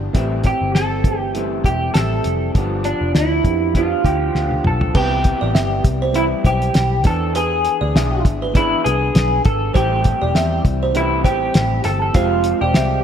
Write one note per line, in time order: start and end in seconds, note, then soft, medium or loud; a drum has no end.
0.00 0.13 E3 medium
0.00 0.14 E3 medium
0.00 0.14 B3 soft
0.00 0.17 B3 medium
0.00 0.15 D4 medium
0.00 0.17 D4 medium
0.00 0.15 G4 medium
0.13 0.52 A1 loud
0.13 0.44 A2 medium
0.13 0.70 E3 medium
0.13 0.45 E3 medium
0.13 0.45 G3 medium
0.13 0.70 A3 medium
0.13 0.70 C4 medium
0.13 0.43 C4 medium
0.13 0.42 E4 medium
0.13 0.71 G4 medium
0.13 kick medium
0.13 closed hi-hat medium
0.43 1.34 G3 soft
0.43 1.35 C4 soft
0.43 1.34 E4 soft
0.43 0.74 G4 medium
0.43 kick medium
0.43 closed hi-hat medium
0.61 1.61 G1 medium
0.75 1.18 A4 loud
0.75 snare medium
0.75 closed hi-hat medium
1.04 1.24 E3 medium
1.04 1.24 A3 medium
1.04 1.25 C4 medium
1.04 1.25 G4 medium
1.04 kick medium
1.04 closed hi-hat medium
1.18 1.31 G4 loud
1.34 1.93 E3 medium
1.34 2.10 E3 medium
1.34 1.95 G3 medium
1.34 2.10 A3 medium
1.34 2.10 C4 medium
1.34 1.96 C4 medium
1.34 1.96 E4 medium
1.34 2.11 G4 medium
1.34 closed hi-hat medium
1.64 1.89 E1 medium
1.64 1.93 G4 medium
1.64 kick medium
1.64 closed hi-hat medium
1.94 2.19 A1 medium
1.94 2.55 E3 soft
1.94 2.55 G3 medium
1.94 2.56 C4 medium
1.94 2.56 E4 medium
1.94 2.51 A4 loud
1.94 snare loud
1.94 closed hi-hat medium
2.24 2.49 F1 medium
2.24 closed hi-hat medium
2.54 2.92 G1 medium
2.54 2.85 G2 medium
2.54 2.85 D3 medium
2.54 3.10 F3 medium
2.54 2.85 F3 medium
2.54 3.11 B3 medium
2.54 2.86 B3 medium
2.54 3.11 D4 medium
2.54 2.85 D4 medium
2.54 3.12 G4 medium
2.54 kick loud
2.54 closed hi-hat medium
2.84 3.76 B3 soft
2.84 3.15 D4 medium
2.84 3.76 D4 soft
2.84 closed hi-hat medium
2.89 3.75 F3 soft
3.01 3.12 F1 medium
3.15 3.39 D2 medium
3.15 3.76 E4 medium
3.15 snare loud
3.15 closed hi-hat medium
3.44 3.93 F2 medium
3.44 3.64 F3 medium
3.44 3.64 B3 medium
3.44 3.65 D4 medium
3.44 3.65 G4 medium
3.44 kick medium
3.44 closed hi-hat medium
3.73 4.34 D3 medium
3.73 4.49 F3 medium
3.73 4.35 F3 medium
3.73 4.50 B3 medium
3.73 4.36 B3 medium
3.73 4.50 D4 medium
3.73 4.36 D4 medium
3.73 4.62 F4 medium
3.73 4.50 G4 medium
3.73 kick medium
3.73 closed hi-hat medium
4.04 4.29 D2 medium
4.04 4.61 G4 medium
4.04 kick medium
4.04 closed hi-hat medium
4.35 4.59 D2 medium
4.35 4.94 D3 soft
4.35 4.95 F3 soft
4.35 4.97 B3 medium
4.35 4.97 D4 medium
4.35 snare medium
4.51 high tom medium
4.64 4.89 B1 medium
4.64 4.97 A4 medium
4.64 mid tom medium
4.81 floor tom medium
4.94 5.32 C2 loud
4.94 6.15 C3 medium
4.94 5.69 E3 medium
4.94 6.14 G3 medium
4.94 5.70 B3 medium
4.94 7.05 B3 medium
4.94 5.70 C4 medium
4.94 5.71 G4 medium
4.94 5.82 G4 medium
4.94 5.11 B4 loud
4.94 kick loud
4.94 crash medium
4.98 6.16 E4 medium
5.24 kick medium
5.24 closed hi-hat medium
5.41 5.53 A1 medium
5.41 5.55 D5 medium
5.55 5.80 G1 medium
5.55 5.71 E5 medium
5.55 snare loud
5.55 closed hi-hat medium
5.84 6.33 C2 medium
5.84 kick medium
5.84 closed hi-hat medium
6.02 6.15 C5 medium
6.13 6.89 E3 medium
6.13 6.89 G3 medium
6.13 7.05 G3 medium
6.13 6.90 C4 medium
6.13 6.24 E4 medium
6.13 7.08 E4 medium
6.13 6.90 G4 medium
6.13 closed hi-hat medium
6.45 6.69 B1 medium
6.45 7.06 G4 medium
6.45 6.74 C5 medium
6.45 kick medium
6.45 closed hi-hat medium
6.62 closed hi-hat soft
6.74 7.05 B1 loud
6.74 snare loud
6.74 closed hi-hat medium
7.04 7.67 E2 medium
7.04 8.01 E3 medium
7.04 7.94 E3 medium
7.04 8.01 B3 medium
7.04 7.94 B3 medium
7.04 7.95 D4 medium
7.04 8.02 D4 medium
7.04 7.34 A4 loud
7.04 8.02 G#5 medium
7.04 kick loud
7.04 closed hi-hat medium
7.35 8.22 G#4 medium
7.35 7.51 B4 loud
7.35 closed hi-hat medium
7.65 closed hi-hat medium
7.81 7.92 D2 medium
7.81 7.94 D5 medium
7.94 8.25 B1 medium
7.94 8.54 E3 medium
7.94 8.53 B3 medium
7.94 8.54 D4 medium
7.94 8.54 G#4 medium
7.94 8.12 E5 medium
7.94 snare loud
7.94 closed hi-hat medium
8.25 8.73 G#1 medium
8.25 kick medium
8.25 closed hi-hat medium
8.42 8.55 B4 medium
8.53 9.29 E3 medium
8.53 8.85 E3 medium
8.53 9.29 B3 medium
8.53 8.85 B3 medium
8.53 9.30 D4 medium
8.53 8.84 D4 medium
8.53 8.84 E4 medium
8.53 9.30 G#4 medium
8.53 8.85 G#4 medium
8.53 kick medium
8.53 closed hi-hat medium
8.84 9.10 C2 medium
8.84 9.74 B3 soft
8.84 9.74 D4 soft
8.84 9.45 G#4 loud
8.84 9.14 B4 medium
8.84 closed hi-hat medium
9.15 9.39 B1 medium
9.15 snare loud
9.15 closed hi-hat medium
9.45 9.69 G#1 medium
9.45 9.75 A4 loud
9.45 kick loud
9.45 closed hi-hat medium
9.73 10.13 A1 loud
9.73 10.34 A2 medium
9.73 10.49 E3 medium
9.73 10.33 E3 medium
9.73 10.35 G3 medium
9.73 10.49 A3 medium
9.73 10.35 C4 medium
9.73 10.50 C4 medium
9.73 10.36 G4 medium
9.73 10.50 G4 medium
9.73 10.61 G4 medium
9.73 9.90 C5 loud
9.73 kick loud
9.73 closed hi-hat medium
10.04 kick medium
10.04 closed hi-hat medium
10.22 10.33 E1 medium
10.22 10.35 D5 medium
10.34 10.59 E2 medium
10.34 10.94 E3 medium
10.34 10.97 G3 medium
10.34 10.98 C4 medium
10.34 10.98 G4 medium
10.34 10.51 E5 medium
10.34 snare loud
10.34 closed hi-hat medium
10.65 11.25 C2 loud
10.65 kick loud
10.65 closed hi-hat medium
10.83 10.95 C5 medium
10.93 12.15 A2 medium
10.93 11.69 E3 medium
10.93 12.16 E3 medium
10.93 11.69 A3 medium
10.93 11.70 C4 medium
10.93 11.24 E4 loud
10.93 11.70 G4 medium
10.93 closed hi-hat medium
10.97 12.14 G3 medium
10.97 12.16 C4 medium
10.97 12.17 G4 medium
11.24 11.49 A1 medium
11.24 11.85 G4 loud
11.24 11.53 C5 medium
11.24 kick medium
11.24 closed hi-hat medium
11.54 11.79 A1 medium
11.54 snare loud
11.54 closed hi-hat loud
11.84 12.09 G1 medium
11.84 12.01 A4 loud
11.84 snare soft
11.84 closed hi-hat medium
12.02 12.14 A4 loud
12.13 12.52 F1 loud
12.13 12.89 F3 medium
12.13 12.90 G#3 medium
12.13 13.04 G#3 medium
12.13 12.90 C4 medium
12.13 13.04 C4 medium
12.13 12.58 F4 loud
12.13 12.90 G4 medium
12.13 12.31 C5 loud
12.13 kick loud
12.13 closed hi-hat medium
12.17 13.04 G4 medium
12.44 closed hi-hat medium
12.61 12.72 E1 medium
12.61 13.03 G4 loud
12.61 12.75 D5 medium
12.74 13.00 C2 medium
12.74 12.91 E5 medium
12.74 snare loud
12.74 closed hi-hat medium